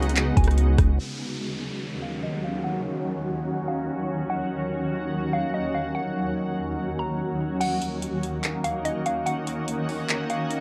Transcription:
Already playing: 808-style bass C#2, ambient pad C#3 G#3 B3 D#4 F#4, synth pluck F#5
0.03 closed hi-hat
0.09 closed hi-hat
0.16 clap, closed hi-hat
0.37 808-style bass C#2, synth pluck G#5, kick, closed hi-hat
0.44 cross-stick, closed hi-hat
0.51 closed hi-hat
0.58 closed hi-hat
0.78 808-style bass C#2, kick, cross-stick, closed hi-hat
0.99 ambient pad D#2 D#3 F#3 C#4 F#4, synth pluck F#5, downlifter
2.02 synth pluck F5
2.23 synth pluck D#5
2.44 synth pluck F5
2.64 synth pluck F#5
3.68 synth pluck F5
4.30 synth pluck F#5
5.33 synth pluck F5
5.54 synth pluck D#5
5.75 synth pluck F5
5.95 synth pluck F#5
6.99 synth pluck A#5
7.61 ambient pad D#3 A#3 C#4 D#4 F#4, synth pluck F#5, closed hi-hat, crash
7.82 closed hi-hat
8.02 closed hi-hat
8.23 closed hi-hat
8.44 clap, closed hi-hat
8.64 synth pluck F5, closed hi-hat
8.85 synth pluck D#5, closed hi-hat
9.06 synth pluck F5, closed hi-hat
9.26 synth pluck F#5, closed hi-hat
9.47 closed hi-hat
9.68 closed hi-hat
9.89 open hi-hat
10.09 clap, closed hi-hat
10.30 synth pluck F5, closed hi-hat
10.51 closed hi-hat

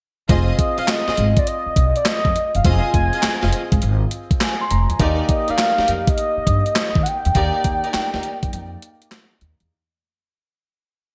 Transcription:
0.29 upright bass F1, grand piano C4 F4 G#4 D#5, string section F4 G#4 C5 D#5, kick, closed hi-hat
0.59 soft synth lead D#5, kick, closed hi-hat
0.78 string section F4 G#4 C5 D#5, soft synth lead F5, muted upright bass stroke, closed hi-hat
0.88 soft synth lead D#5, snare, clap, closed hi-hat
1.07 string section F4 G#4 C5 D#5, muted upright bass stroke, snare
1.17 upright bass G#1, closed hi-hat
1.37 soft synth lead D5, kick, closed hi-hat
1.47 soft synth lead D#5, closed hi-hat
1.66 muted upright bass stroke
1.76 upright bass C2, kick, closed hi-hat
1.96 soft synth lead D5, closed hi-hat
2.05 soft synth lead D#5, snare, clap, closed hi-hat
2.25 upright bass F2, kick
2.36 closed hi-hat
2.55 upright bass F#1, soft synth lead F5, closed hi-hat
2.64 upright bass F1, grand piano C4 F4 G#4 D#5, string section F4 G#4 C5 D#5, soft synth lead G#5, kick, closed hi-hat
2.94 upright bass F1, kick, closed hi-hat
3.13 string section F4 G#4 C5 D#5, closed hi-hat
3.23 muted upright bass stroke, snare, clap, closed hi-hat
3.42 upright bass F1, string section F4 G#4 C5 D#5, snare
3.53 closed hi-hat
3.72 upright bass G#1, kick, closed hi-hat
3.82 upright bass G#1, closed hi-hat
4.11 closed hi-hat
4.31 kick, closed hi-hat
4.41 grand piano G#5, snare, clap, closed hi-hat
4.61 grand piano C6
4.71 upright bass F1, grand piano A#5, closed hi-hat
4.90 upright bass E2, grand piano G#5, closed hi-hat
4.99 upright bass D#2, grand piano A#3 D#4 G4 D#5, string section D#4 G4 A#4 D5, kick, closed hi-hat
5.29 soft synth lead D#5, kick, closed hi-hat
5.48 string section D#4 G4 A#4 D5, soft synth lead F5, muted upright bass stroke, closed hi-hat
5.58 snare, clap, closed hi-hat
5.78 string section D#4 G4 A#4 D5, muted upright bass stroke, snare
5.88 upright bass F2, closed hi-hat
6.07 soft synth lead D#5, kick, closed hi-hat
6.18 closed hi-hat
6.37 muted upright bass stroke
6.47 upright bass G2, kick, closed hi-hat
6.66 closed hi-hat
6.76 snare, clap, closed hi-hat
6.95 upright bass D#3, kick
7.03 soft synth lead F#5, closed hi-hat
7.08 soft synth lead G5
7.25 upright bass E2, closed hi-hat
7.35 upright bass D#2, grand piano A#3 D#4 G4 D5, string section D#4 G4 A#4 D5, kick, closed hi-hat
7.64 upright bass D#2, kick, closed hi-hat
7.84 string section D#4 G4 A#4 D5, closed hi-hat
7.94 muted upright bass stroke, snare, clap, closed hi-hat
8.13 upright bass D#2, string section D#4 G4 A#4 D5, snare
8.23 closed hi-hat
8.43 upright bass F2, kick, closed hi-hat
8.53 upright bass F2, closed hi-hat
8.82 closed hi-hat
9.02 closed hi-hat
9.11 snare, clap, closed hi-hat
9.41 upright bass D#2, closed hi-hat
9.60 upright bass E2, closed hi-hat

